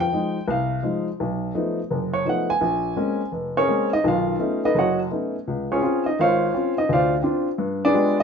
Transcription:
0.00 0.45 G5 loud
0.12 0.36 F3 medium
0.12 0.37 G#3 soft
0.12 0.36 D#4 medium
0.48 0.78 C2 medium
0.48 1.03 F5 medium
0.83 1.07 F3 medium
0.83 1.07 G#3 soft
0.83 1.07 D#4 medium
1.20 1.50 B1 medium
1.55 1.78 F3 medium
1.55 1.78 A3 soft
1.55 1.79 B3 medium
1.55 1.79 D#4 medium
1.91 2.21 F#1 medium
2.14 2.26 C#5 medium
2.25 2.49 F3 soft
2.25 2.50 A3 soft
2.25 2.50 B3 soft
2.25 2.50 D#4 medium
2.25 2.49 F#5 medium
2.50 3.29 G#5 loud
2.61 2.92 A#1 medium
2.96 3.20 G#3 medium
2.96 3.21 A#3 medium
2.96 3.21 C4 soft
2.96 3.21 C#4 medium
3.32 3.63 F1 medium
3.57 3.68 C#4 medium
3.57 3.90 G#4 medium
3.57 3.90 A#4 medium
3.57 3.89 C#5 medium
3.68 3.92 G#3 medium
3.68 3.92 A#3 soft
3.68 3.92 C4 soft
3.68 3.92 C#4 medium
3.93 4.05 D#4 medium
3.93 4.05 D#5 loud
4.04 4.35 B1 medium
4.04 4.35 D#3 medium
4.04 4.60 F5 medium
4.09 4.60 F4 medium
4.39 4.63 A3 medium
4.39 4.63 B3 medium
4.39 4.63 C#4 soft
4.39 4.64 D#4 medium
4.65 4.76 D#4 medium
4.65 4.76 A4 medium
4.65 4.76 B4 medium
4.65 4.76 D#5 medium
4.75 5.05 F#1 medium
4.75 4.98 C#5 medium
4.79 4.99 F#4 medium
4.79 4.99 D#5 medium
4.79 4.99 F#5 medium
5.11 5.35 A3 soft
5.11 5.35 B3 soft
5.11 5.35 C#4 soft
5.11 5.35 D#4 medium
5.47 5.77 C#2 medium
5.72 5.81 C#4 medium
5.72 5.81 F4 medium
5.72 6.03 G#4 medium
5.72 6.03 C#5 medium
5.82 6.06 C4 medium
5.82 6.06 C#4 soft
5.82 6.06 F4 medium
6.06 6.18 D#4 medium
6.06 6.18 D#5 medium
6.19 6.49 G#1 medium
6.19 6.53 F4 medium
6.19 6.74 C5 medium
6.19 6.73 C#5 medium
6.19 6.73 F5 medium
6.54 6.77 C4 medium
6.54 6.77 C#4 soft
6.54 6.77 F4 medium
6.78 6.90 D#4 medium
6.78 6.89 D#5 medium
6.89 7.19 D2 medium
6.89 7.13 D5 medium
6.89 7.13 F5 medium
6.93 7.13 F4 medium
6.93 7.13 C5 medium
7.23 7.47 C4 medium
7.23 7.48 D4 medium
7.23 7.48 F4 medium
7.58 7.90 G2 medium
7.85 8.17 D4 medium
7.85 8.17 G#4 medium
7.85 8.17 B4 medium
7.85 8.17 D5 loud
7.94 8.18 G#3 medium
7.94 8.18 B3 soft
7.94 8.18 F4 medium
7.94 8.19 G4 medium

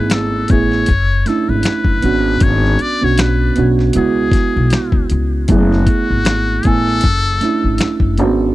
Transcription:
0.00 0.42 G#1 medium
0.00 0.32 A3 medium
0.00 0.32 B3 medium
0.00 0.89 C#4 medium
0.00 0.33 E4 medium
0.00 0.33 G#4 medium
0.00 0.14 B4 medium
0.10 0.52 A4 medium
0.10 finger snap medium
0.10 snare loud
0.10 closed hi-hat medium
0.48 0.83 A1 medium
0.48 0.88 A3 medium
0.48 0.88 B3 medium
0.48 0.89 E4 medium
0.48 1.29 C#5 loud
0.48 kick medium
0.48 closed hi-hat medium
0.53 0.89 G#4 medium
0.72 snare soft
0.86 1.22 F#1 medium
0.86 kick medium
0.86 closed hi-hat medium
1.26 2.03 A3 medium
1.26 2.02 C#4 soft
1.26 2.03 D4 medium
1.26 2.04 E4 medium
1.26 1.51 A4 medium
1.26 snare soft
1.26 closed hi-hat medium
1.49 1.63 G#1 medium
1.49 2.45 B4 medium
1.63 finger snap medium
1.63 snare medium
1.63 closed hi-hat medium
1.85 2.00 F#1 medium
1.85 kick medium
2.02 2.37 G#1 medium
2.02 2.82 B3 medium
2.02 2.83 C#4 medium
2.02 2.83 D4 medium
2.02 2.84 F#4 medium
2.02 closed hi-hat medium
2.40 2.75 G#1 medium
2.40 2.83 C#5 medium
2.40 kick loud
2.40 closed hi-hat medium
2.65 snare soft
2.79 3.06 D5 medium
2.79 closed hi-hat medium
3.01 3.50 B1 medium
3.01 3.48 B3 medium
3.01 3.48 C#4 medium
3.01 3.49 D4 soft
3.01 3.49 F#4 medium
3.01 3.22 C#5 medium
3.18 3.71 B4 medium
3.18 finger snap loud
3.18 snare loud
3.18 closed hi-hat medium
3.56 3.91 B1 medium
3.56 3.94 B3 medium
3.56 3.95 C#4 medium
3.56 3.96 D4 medium
3.56 3.96 F#4 medium
3.56 closed hi-hat medium
3.79 snare soft
3.93 4.29 C#2 medium
3.93 5.23 G#3 medium
3.93 5.24 B3 medium
3.93 5.24 E4 medium
3.93 5.07 G#4 medium
3.93 closed hi-hat medium
3.98 5.25 F#4 medium
4.32 kick loud
4.32 snare soft
4.32 closed hi-hat medium
4.56 4.70 B1 medium
4.70 finger snap medium
4.70 snare medium
4.70 closed hi-hat medium
4.92 5.08 D2 medium
4.92 kick medium
5.10 5.45 C#2 medium
5.10 closed hi-hat medium
5.48 5.83 F#1 loud
5.48 6.47 A3 medium
5.48 6.47 B3 medium
5.48 6.48 E4 medium
5.48 6.68 F#4 medium
5.48 kick medium
5.48 closed hi-hat medium
5.52 6.48 G#4 medium
5.72 snare soft
5.87 kick medium
5.87 closed hi-hat medium
6.10 6.58 G#1 medium
6.25 finger snap medium
6.25 snare loud
6.25 closed hi-hat medium
6.63 6.99 A1 medium
6.63 7.03 A3 medium
6.63 7.03 B3 medium
6.63 7.04 E4 medium
6.63 8.19 A4 loud
6.63 kick medium
6.63 closed hi-hat medium
6.67 7.04 G#5 medium
6.87 snare soft
7.01 7.37 F#1 medium
7.01 kick medium
7.01 closed hi-hat medium
7.41 8.18 A3 medium
7.41 8.18 C#4 soft
7.41 8.19 D4 medium
7.41 8.20 E4 medium
7.41 snare soft
7.41 closed hi-hat medium
7.64 7.78 G#1 medium
7.78 finger snap medium
7.78 snare medium
7.78 closed hi-hat medium
8.00 8.18 F#1 medium
8.00 kick medium
8.18 8.52 G#1 medium
8.18 8.26 A#3 medium
8.18 8.55 C#4 medium
8.18 8.55 D4 medium
8.18 8.55 F#4 medium
8.18 closed hi-hat soft
8.25 8.55 B3 medium

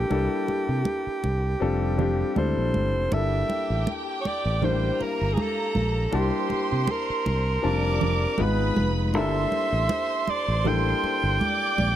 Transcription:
0.00 0.10 G3 medium
0.00 0.10 A#3 medium
0.00 0.10 D4 medium
0.00 0.11 E4 medium
0.00 0.13 G4 medium
0.00 2.34 G4 medium
0.00 0.11 A4 medium
0.10 0.27 C2 medium
0.10 1.41 G3 medium
0.10 1.41 A#3 medium
0.10 1.41 D4 medium
0.10 1.41 E4 medium
0.10 1.42 A4 medium
0.10 muted conga soft
0.48 muted fingered electric bass stroke soft
0.48 muted conga soft
0.69 0.83 C3 medium
0.85 high conga medium
1.07 muted fingered electric bass stroke soft
1.24 1.54 C2 medium
1.24 muted conga soft
1.60 2.22 F1 medium
1.60 1.93 G3 medium
1.60 1.94 C4 medium
1.60 1.94 D4 medium
1.60 1.94 F4 medium
1.60 1.94 A4 medium
1.98 2.31 G3 medium
1.98 2.31 C4 medium
1.98 2.31 D4 medium
1.98 2.32 F4 medium
1.98 2.32 G4 medium
1.98 low conga medium
2.36 2.53 D2 medium
2.36 3.02 G3 medium
2.36 3.02 C4 medium
2.36 3.02 D4 medium
2.36 3.02 E4 medium
2.36 3.03 A4 medium
2.36 3.15 C5 medium
2.36 high conga medium
2.57 2.71 A#1 medium
2.74 2.95 G1 medium
2.74 high conga medium
2.95 3.09 F1 medium
3.11 3.42 G1 medium
3.11 4.42 G3 medium
3.11 4.42 A#3 medium
3.11 4.43 D4 medium
3.11 4.43 E4 medium
3.11 4.97 G4 medium
3.11 4.43 A4 medium
3.11 3.88 E5 loud
3.11 4.97 G5 medium
3.11 muted conga soft
3.50 muted conga soft
3.70 3.84 A1 medium
3.87 high conga medium
4.21 4.29 C#5 medium
4.25 4.67 D5 medium
4.25 muted fingered electric bass stroke soft
4.25 muted conga soft
4.45 4.90 A1 medium
4.62 5.93 G3 medium
4.62 5.93 A#3 medium
4.62 5.93 D4 medium
4.62 5.93 E4 medium
4.62 5.94 C5 medium
4.62 5.04 C5 medium
4.62 low conga medium
5.00 6.11 A#3 medium
5.00 5.35 A#4 medium
5.00 6.11 A#5 medium
5.00 muted fingered electric bass stroke soft
5.00 muted conga soft
5.21 5.35 G1 medium
5.33 5.43 G#4 medium
5.33 high conga medium
5.41 6.14 A4 medium
5.75 6.06 A#1 medium
5.75 high conga medium
6.12 6.30 C2 loud
6.12 7.43 G3 medium
6.12 7.43 A#3 medium
6.12 7.43 D4 medium
6.12 7.44 E4 medium
6.12 6.93 G4 medium
6.12 7.60 C5 medium
6.12 7.44 A5 medium
6.12 7.61 C6 medium
6.12 muted conga soft
6.50 muted fingered electric bass stroke soft
6.50 muted conga soft
6.72 6.86 C3 medium
6.87 high conga medium
6.92 8.44 A#4 medium
7.10 muted fingered electric bass stroke soft
7.26 7.57 C2 medium
7.26 muted conga soft
7.62 8.25 F1 medium
7.62 8.38 G3 medium
7.62 8.38 C4 medium
7.62 8.39 D4 medium
7.62 8.38 F4 medium
7.62 8.38 D5 medium
7.62 8.39 A5 medium
7.62 8.38 D6 medium
8.01 muted conga soft
8.01 low conga medium
8.38 8.70 G#1 medium
8.38 9.04 G#3 medium
8.38 9.05 B3 medium
8.38 9.05 D#4 medium
8.38 9.05 F4 medium
8.38 9.13 B4 medium
8.38 9.05 B4 medium
8.38 9.13 B5 medium
8.38 high conga medium
8.43 8.90 B4 medium
8.76 9.14 F1 medium
8.76 high conga medium
9.13 9.45 G1 loud
9.13 10.44 G3 medium
9.13 10.45 A#3 medium
9.13 10.45 D4 medium
9.13 10.45 E4 medium
9.13 10.45 A4 medium
9.13 11.37 C5 medium
9.13 11.36 C6 medium
9.13 muted conga soft
9.17 10.31 E5 loud
9.52 muted conga soft
9.72 9.86 A1 medium
9.89 high conga medium
10.27 10.70 D5 medium
10.27 muted fingered electric bass stroke soft
10.27 muted conga soft
10.48 10.92 A1 medium
10.64 11.95 G3 medium
10.64 11.95 A#3 medium
10.64 11.96 D4 medium
10.64 11.96 E4 medium
10.64 11.96 A4 medium
10.64 low conga medium
10.68 11.96 G5 medium
11.04 muted fingered electric bass stroke soft
11.04 muted conga soft
11.23 11.37 G1 medium
11.40 11.96 D5 medium
11.40 11.96 D6 medium
11.40 high conga medium
11.78 11.96 A#1 medium
11.78 high conga medium

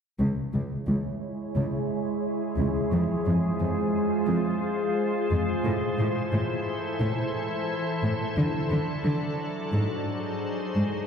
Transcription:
0.18 0.27 C#2 soft
0.18 5.60 G#3 soft
0.18 2.87 E4 soft
0.18 5.60 G#4 soft
0.18 2.88 C#5 soft
0.53 0.61 C#2 soft
0.88 0.96 C#2 soft
1.56 1.64 C#2 soft
2.58 2.66 C#2 soft
2.92 3.00 F2 soft
2.92 5.65 F4 medium
2.92 8.37 C5 medium
3.26 3.34 F2 soft
3.60 3.68 F2 soft
4.27 4.35 F2 soft
5.31 5.39 F2 soft
5.64 5.72 A2 soft
5.64 8.37 E3 medium
5.64 8.37 E4 medium
5.64 9.74 A4 medium
5.99 6.07 A2 soft
6.33 6.41 A2 soft
7.00 7.08 A2 soft
8.03 8.11 A2 soft
8.37 8.45 D3 soft
8.37 11.07 F#3 medium
8.71 8.79 D3 soft
9.05 9.13 D3 soft
9.73 9.81 G#2 soft
10.75 10.83 G#2 soft

